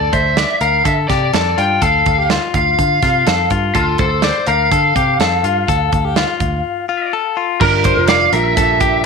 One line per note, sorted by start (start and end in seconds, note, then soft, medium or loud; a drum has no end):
0.00 0.13 A4 medium
0.00 0.12 D5 medium
0.13 0.44 D2 medium
0.13 0.37 C5 medium
0.13 0.58 E5 medium
0.13 kick medium
0.13 closed hi-hat medium
0.37 0.61 D5 medium
0.37 snare loud
0.37 closed hi-hat medium
0.61 0.82 D2 medium
0.61 0.85 A#4 medium
0.61 0.85 F5 medium
0.61 closed hi-hat medium
0.85 1.06 D3 medium
0.85 1.09 A4 medium
0.85 0.92 E5 medium
0.85 kick medium
0.85 closed hi-hat medium
1.08 1.30 C3 medium
1.08 1.33 G4 medium
1.08 1.59 D5 medium
1.08 kick medium
1.08 snare soft
1.08 closed hi-hat medium
1.33 1.54 F2 medium
1.33 1.58 A4 medium
1.33 snare loud
1.33 closed hi-hat medium
1.58 1.78 G2 medium
1.58 1.82 F4 medium
1.58 1.81 G5 medium
1.58 closed hi-hat medium
1.82 2.02 D2 loud
1.82 2.18 A4 loud
1.82 2.27 F5 medium
1.82 kick loud
1.82 closed hi-hat medium
2.06 2.37 D2 medium
2.06 kick medium
2.06 closed hi-hat medium
2.18 2.30 G4 medium
2.30 2.99 F4 medium
2.30 snare loud
2.30 closed hi-hat medium
2.54 2.75 D2 medium
2.54 3.47 F5 loud
2.54 kick medium
2.54 closed hi-hat medium
2.79 2.99 D3 medium
2.79 kick medium
2.79 closed hi-hat medium
3.02 3.23 C3 medium
3.02 3.27 F4 medium
3.02 kick medium
3.02 snare soft
3.02 closed hi-hat medium
3.27 3.47 F2 medium
3.27 3.51 A4 medium
3.27 snare loud
3.27 closed hi-hat medium
3.50 3.71 G2 medium
3.50 3.75 F4 medium
3.50 kick medium
3.50 closed hi-hat medium
3.75 3.95 D2 loud
3.75 3.97 F4 medium
3.75 3.99 A4 medium
3.75 kick medium
3.75 closed hi-hat medium
3.98 4.30 D2 loud
3.98 4.22 A4 medium
3.98 4.23 C5 medium
3.98 kick medium
3.98 closed hi-hat medium
4.22 4.46 C5 medium
4.22 4.47 D5 medium
4.22 snare loud
4.22 closed hi-hat medium
4.46 4.68 D2 medium
4.46 4.72 A#4 medium
4.46 7.08 F5 medium
4.46 closed hi-hat medium
4.72 4.92 D3 medium
4.72 4.96 A4 medium
4.72 kick medium
4.72 closed hi-hat medium
4.96 5.16 C3 medium
4.96 5.20 G4 medium
4.96 kick medium
4.96 closed hi-hat medium
5.19 5.40 F2 medium
5.19 5.44 A4 medium
5.19 snare loud
5.19 closed hi-hat medium
5.43 5.64 G2 medium
5.43 5.68 F4 medium
5.43 closed hi-hat medium
5.68 5.89 D2 medium
5.68 6.05 A4 medium
5.68 kick medium
5.68 closed hi-hat medium
5.92 6.23 D2 medium
5.92 kick medium
5.92 closed hi-hat medium
6.05 6.17 G4 medium
6.16 6.85 F4 medium
6.16 snare loud
6.16 closed hi-hat medium
6.40 6.61 D2 medium
6.40 kick medium
6.40 closed hi-hat medium
6.89 7.13 F4 medium
7.13 7.37 A4 medium
7.37 7.61 F4 medium
7.61 7.91 G1 loud
7.61 7.97 G3 medium
7.61 7.97 D4 medium
7.61 7.96 F4 medium
7.61 8.06 A#4 medium
7.61 7.85 A#4 medium
7.61 7.95 A#4 medium
7.61 kick loud
7.61 crash loud
7.84 8.09 C5 medium
7.84 kick medium
7.84 clap medium
7.84 closed hi-hat medium
7.96 8.27 F1 medium
7.96 8.32 D4 soft
7.96 8.33 F4 soft
7.96 8.33 A#4 medium
8.08 8.33 D5 medium
8.08 8.33 F5 loud
8.08 snare loud
8.08 clap medium
8.08 closed hi-hat medium
8.32 9.06 A#1 medium
8.32 8.55 G3 medium
8.32 8.56 D4 medium
8.32 8.56 F4 medium
8.32 8.57 A#4 medium
8.32 9.06 E5 loud
8.32 closed hi-hat medium
8.56 9.03 G3 medium
8.56 9.03 D4 medium
8.56 9.04 F4 medium
8.56 8.80 A4 medium
8.56 9.05 A#4 medium
8.56 kick loud
8.56 closed hi-hat medium
8.80 9.04 G4 medium
8.80 kick medium
8.80 closed hi-hat medium